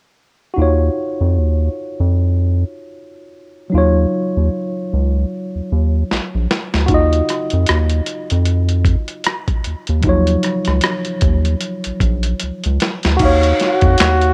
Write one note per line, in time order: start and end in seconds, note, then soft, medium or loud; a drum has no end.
0.54 3.68 D#4 medium
0.54 3.67 F#4 medium
0.58 0.90 D#2 loud
0.58 3.70 F4 medium
0.62 3.71 C#5 medium
1.21 1.39 F2 medium
1.37 1.69 D#2 medium
2.00 2.64 F2 medium
3.70 6.83 F#3 medium
3.70 6.84 D#4 medium
3.74 4.06 D#2 loud
3.74 6.85 F4 medium
3.74 6.87 C#5 medium
4.37 4.50 D#2 medium
4.93 5.25 C#2 medium
5.55 5.61 D#2 soft
5.72 6.04 D#2 medium
6.11 6.20 A#1 soft
6.11 snare soft
6.35 6.47 A#1 medium
6.51 snare medium
6.74 6.87 D2 medium
6.74 snare medium
6.86 7.22 D#2 loud
6.86 10.00 D#4 medium
6.86 9.99 F#4 medium
6.86 kick medium
6.86 closed hi-hat medium
6.92 10.02 F4 medium
6.92 10.03 D#5 medium
7.12 closed hi-hat soft
7.28 cross-stick soft
7.28 closed hi-hat medium
7.50 7.66 F2 medium
7.50 closed hi-hat soft
7.66 8.01 D#2 medium
7.66 cross-stick medium
7.66 closed hi-hat medium
7.90 closed hi-hat soft
8.06 closed hi-hat medium
8.30 8.96 F2 medium
8.30 closed hi-hat soft
8.45 closed hi-hat medium
8.69 closed hi-hat soft
8.85 kick medium
8.85 closed hi-hat soft
9.08 closed hi-hat soft
9.24 cross-stick medium
9.24 closed hi-hat medium
9.48 kick medium
9.48 closed hi-hat soft
9.64 9.75 D#2 soft
9.64 closed hi-hat medium
9.87 10.02 D#2 medium
9.87 closed hi-hat soft
10.01 10.37 D#2 loud
10.01 10.10 F3 medium
10.01 13.16 D#4 medium
10.01 kick medium
10.01 closed hi-hat medium
10.07 13.17 F#3 medium
10.07 13.17 F4 medium
10.07 13.18 C#5 medium
10.27 closed hi-hat soft
10.43 cross-stick soft
10.43 closed hi-hat medium
10.65 10.81 C#2 medium
10.65 cross-stick soft
10.65 closed hi-hat soft
10.81 cross-stick loud
10.81 closed hi-hat medium
11.05 closed hi-hat soft
11.21 11.55 D#2 loud
11.21 kick medium
11.21 closed hi-hat medium
11.45 closed hi-hat soft
11.60 closed hi-hat medium
11.84 11.92 A#1 soft
11.84 closed hi-hat soft
12.00 12.34 A#1 medium
12.00 kick medium
12.00 closed hi-hat soft
12.23 closed hi-hat soft
12.39 12.51 C#2 soft
12.39 closed hi-hat medium
12.63 12.78 C#2 medium
12.63 closed hi-hat soft
12.80 snare medium
12.80 closed hi-hat medium
13.03 13.18 D2 medium
13.03 snare medium
13.03 closed hi-hat soft
13.17 14.34 D#4 medium
13.17 14.34 F#4 medium
13.17 kick medium
13.17 closed hi-hat medium
13.17 crash medium
13.21 13.53 D#2 loud
13.21 14.34 F5 medium
13.25 14.34 C#5 medium
13.43 closed hi-hat soft
13.59 14.34 F#4 medium
13.59 snare soft
13.59 closed hi-hat medium
13.81 13.96 F2 medium
13.81 kick medium
13.81 closed hi-hat soft
13.98 14.32 D#2 medium
13.98 snare medium
13.98 clap medium
13.98 closed hi-hat medium
14.21 closed hi-hat soft